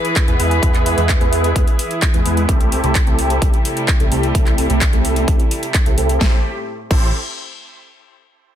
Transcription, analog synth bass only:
0.28 E2
0.39 E2
0.98 E2
1.21 E2
2.14 E2
2.26 E2
2.49 C2
2.84 C2
3.07 C2
3.42 C2
4.00 C2
4.12 C2
4.35 C2
4.70 C2
4.93 C2
5.28 C2
5.86 C2
5.98 C2
6.21 A1
6.91 A1

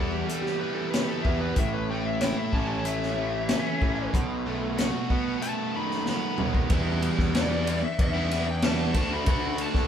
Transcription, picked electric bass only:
Already playing: E2
1.26 E2
1.57 A1
2.53 A1
3.82 A1
4.14 B1
5.10 B2
6.40 D#2
6.70 E2
7.19 E2
7.99 E2
8.94 D2
9.28 D2
9.74 D2

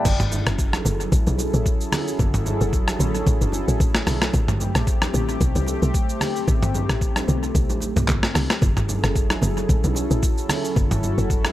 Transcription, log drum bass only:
0.05 F#1
0.47 F#1
0.86 F#1
1.12 A1
1.27 B1
1.54 A1
2.19 F#1
2.61 F#1
3.00 A1
3.27 A1
3.42 F#1
3.68 A1
3.80 A1
4.07 B1
4.34 A1
4.75 A1
5.14 A1
5.41 B1
5.56 C2
5.82 B1
6.48 A1
6.89 A1
7.28 B1
7.55 B1
7.70 A1
7.96 B1
8.08 B1
8.35 C2
8.62 F#1
9.04 F#1
9.42 F#1
9.69 A1
9.84 B1
10.11 A1
10.76 F#1
11.18 F#1

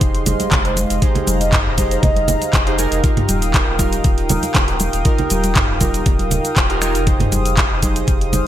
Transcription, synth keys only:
Already playing: D#4 G4 G#4 C5
1.02 D#4 G4 G#4 C5
1.78 D#4 G4 G#4 C5
2.67 D#4 G4 G#4 C5
2.79 D#4 G4 G#4 A#4
3.04 D#4 F4 G4 A#4
3.79 D#4 F4 G4 A#4
5.05 D#4 F4 G4 A#4
5.81 D#4 F4 G4 A#4
6.70 D#4 F4 G4 A#4
6.82 D#4 F4 G4 A#4
7.07 D#4 G4 G#4 C5
7.83 D#4 G4 G#4 C5

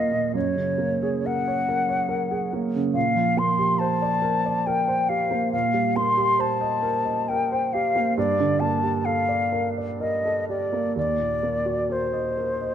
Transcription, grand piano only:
Already playing: D#2 A#3 F4 A#4 D#5
0.12 A#2
0.34 F#2
0.55 C#3
0.78 A#3
1.03 G#4
1.25 A#4
1.48 C#5
1.69 A#4
1.89 C#5
2.09 A#4
2.31 G#4
2.53 A#3
2.74 C#3
2.94 A#2
3.15 F3
3.37 A#3
3.59 G4
3.80 C5
4.02 D5
4.22 A#4
4.46 D5
4.67 A#4
4.88 C5
5.09 G4
5.31 A#3
5.53 A#2
5.74 G3
5.96 A#3
6.17 G4
6.39 C5
6.61 D#5
6.83 A#4
7.05 D#5
7.30 A#4
7.52 C5
7.74 G4
7.96 A#3
8.17 G2
8.39 D3
8.61 A#3
8.83 G4
9.06 A4
9.29 D5
9.52 A#4
9.78 D5
10.00 A#4
10.25 A4
10.49 G4
10.73 A#3
10.96 D#2
11.18 A#2
11.43 A#3
11.66 F#4
11.90 A#4
12.13 D#5
12.37 A#4
12.61 D#5

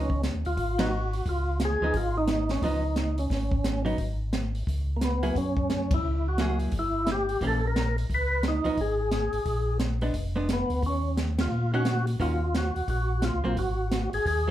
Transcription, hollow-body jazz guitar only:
0.79 F3 B3 D#4
1.82 F3 B3 D#4
2.64 F3 B3 D#4
3.85 F#3 B3 D#4
5.23 F#3 A#3 E4 G#4
6.40 F#3 A#3 E4 G#4
7.42 E3 A#3 C#4
8.64 F3 B3 D#4
10.02 G#3 B3 D4
10.36 G#3 B3 D4
11.74 D#3 A#3 C#4 F#4
12.20 D#3 A#3 C#4 F#4
13.44 F#3 A#3 C4
14.48 F#3

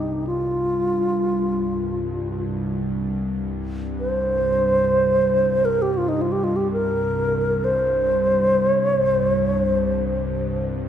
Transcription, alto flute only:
Already playing: D#4
0.27 F4
4.00 C5
5.65 A#4
5.82 G4
5.94 F4
6.09 D#4
6.21 F4
6.32 G4
6.44 F4
6.56 G4
6.73 A#4
7.64 C5
8.73 C#5
9.03 C5
9.35 C#5
9.64 C5

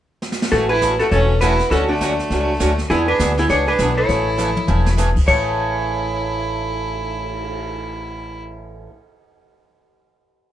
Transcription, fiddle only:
0.52 A3
0.70 E4
1.01 A3
1.11 C#4
1.41 E4
1.71 C#4
1.89 A3
2.89 B3
3.07 D4
3.37 B3
3.50 D4
3.68 D4
3.96 E4
5.27 E4

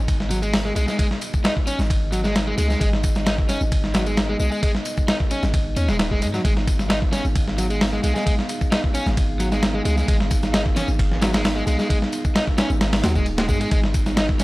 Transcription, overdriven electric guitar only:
0.31 F#3
0.42 G#3
0.65 G#3
0.76 G#3
0.88 G#3
0.98 G#3
1.44 D#4
1.67 C#4
2.12 F#3
2.24 G#3
2.47 G#3
2.58 G#3
2.70 G#3
2.80 G#3
3.26 D#4
3.49 C#4
3.94 F#3
4.06 G#3
4.29 G#3
4.40 G#3
4.52 G#3
4.63 G#3
5.08 D#4
5.31 C#4
5.77 C#4
5.89 G#3
6.12 G#3
6.22 G#3
6.34 F#3
6.45 G#3
6.90 D#4
7.12 C#4
7.58 F#3
7.70 G#3
7.93 G#3
8.04 G#3
8.15 G#3
8.26 G#3
8.71 D#4
8.94 C#4
9.40 F#3
9.52 G#3
9.74 G#3
9.85 G#3
9.97 G#3
10.08 G#3
10.53 D#4
10.76 C#4
11.21 F#3
11.33 G#3
11.56 G#3
11.67 G#3
11.79 G#3
11.89 G#3
12.35 D#4
12.58 C#4
13.04 F#3
13.16 G#3
13.38 G#3
13.49 G#3
13.61 G#3
13.72 G#3
14.17 D#4
14.40 C#4

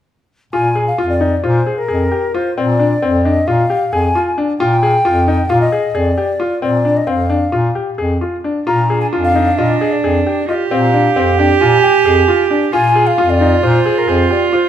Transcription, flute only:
0.53 G#5
0.87 F5
1.09 D5
1.37 D5
1.44 C5
1.78 A#4
2.35 C5
2.57 D5
3.25 D#5
3.47 F5
3.93 G#5
4.59 G5
5.49 F5
5.61 D#5
5.95 D5
6.63 D5
6.97 D#5
7.07 F5
8.67 A#5
9.01 G#5
9.24 F5
9.58 D#5
9.92 D5
10.48 D#5
10.71 F5
11.38 G5
11.61 G#5
12.73 G#5
13.07 F5
13.30 D5
13.63 C5
13.98 A#4
14.09 C5
14.32 D5
14.54 C5

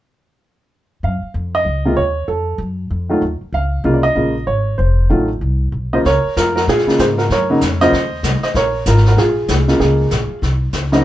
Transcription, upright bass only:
1.03 F#2
1.23 muted upright bass stroke
1.34 F2
1.65 C#2
1.96 D#2
2.28 F2
2.58 F#2
2.91 F2
3.22 D#2
3.41 muted upright bass stroke
3.52 C#2
3.84 C2
4.16 A#1
4.47 G#1
4.79 F1
5.10 A1
5.41 C2
5.72 B1
6.05 C#2
6.24 muted upright bass stroke
6.37 F2
6.68 A#2
6.87 muted upright bass stroke
6.99 G#2
7.30 F#2
7.61 F2
7.93 D#2
8.23 C2
8.42 muted upright bass stroke
8.54 A#1
8.86 G#1
9.17 A#1
9.49 C2
9.80 C#2
10.11 A#1
10.30 muted upright bass stroke
10.42 C2
10.73 C#2

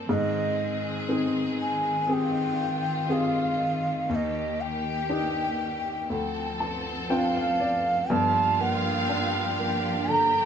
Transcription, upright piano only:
Already playing: A#3 G4 A4
0.09 G#2
1.09 C4 D#4 G#4
2.08 C4 G4 G#4
3.09 C4 G4 G#4
4.09 D#2
5.09 D4 D#4 G4
6.10 D2
6.60 A5
7.10 C4 D4 F4 G5
7.35 F5
7.60 D5
8.10 G1 G2
8.60 A#3
9.09 D4
9.59 A#3
10.08 D3

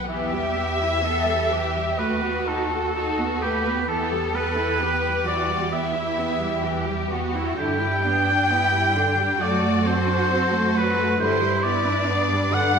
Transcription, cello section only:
0.10 G4
1.05 A4
1.52 G4
1.99 F#4
2.95 F#4
3.43 B4
3.89 A4
4.80 G4
5.26 F#4
5.72 E4
6.64 G4
7.11 F#4
7.58 E4
8.05 D4
8.52 E4
8.97 D4
9.42 F#4
11.21 E4
12.09 D4

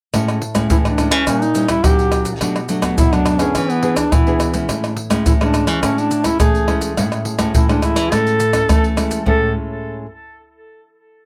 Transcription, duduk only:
0.71 E4
0.86 D4
1.12 C#4
1.42 D#4
1.69 E4
1.85 G4
2.98 E4
3.13 D4
3.39 C#4
3.70 B3
3.97 D4
4.14 E4
5.27 E4
5.41 D4
5.68 C#4
5.99 D4
6.25 E4
6.40 G#4
7.56 E4
7.70 D4
7.83 E4
8.12 A4
9.26 A4

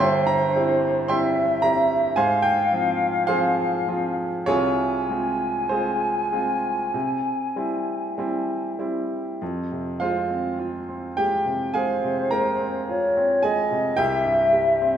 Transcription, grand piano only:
0.00 G1 G2 E5 G5 C6
0.27 A#5
0.56 G3 C4 E4
1.08 G3 C4 E4 E5 G5 C6
1.62 G3 C4 E4 A#5
2.16 G#2 C5 F5 G#5
2.42 G5
2.73 F3 C4 F4
3.27 F3 C4 F4 G#4 C5 F5
3.88 F3 C4 F4
4.46 C2 C3 F4 G#4 C#5
5.10 G#3 C4 F4
5.69 G#3 C4 F4 G#4 C5
6.32 G#3 C4 F4
6.94 C3
7.56 G3 C4 E4
8.18 G3 C4 E4
8.79 G3 C4 E4
9.42 F2
9.72 C3
10.00 G#3 F4 C5 F5
10.31 C4
10.59 F4
10.88 C4
11.17 G#3 G4 G5
11.46 C3
11.74 G#3 G#4 F5 G#5
12.04 C3
12.31 G#3 A#4 A#5
12.61 C4
12.89 F4
13.17 C4
13.43 G#3 G#4 G#5
13.71 C3
13.97 C2 G4 E5 G5
14.25 G2
14.53 G3
14.82 C4

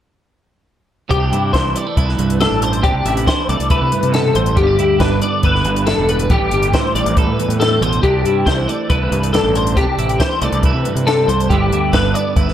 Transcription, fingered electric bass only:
1.11 C2
1.32 G2
1.53 C2
1.97 C2
2.19 C2
2.51 A1
2.94 C2
3.05 A1
3.49 C2
3.60 C2
3.82 C3
4.03 C3
4.35 A1
4.57 G1
4.79 D2
5.00 G1
5.43 G1
5.65 G1
5.98 E1
6.30 A1
6.41 A1
6.52 G1
6.94 A1
7.05 A1
7.27 A2
7.49 A2
7.81 A1
8.03 C2
8.25 G2
8.46 C2
8.90 C2
9.12 C2
9.43 A1
9.87 C2
9.98 A1
10.42 C2
10.52 C2
10.74 C3
10.95 C3
11.28 C2
11.50 G1
11.71 D2
11.93 G1
12.36 G1

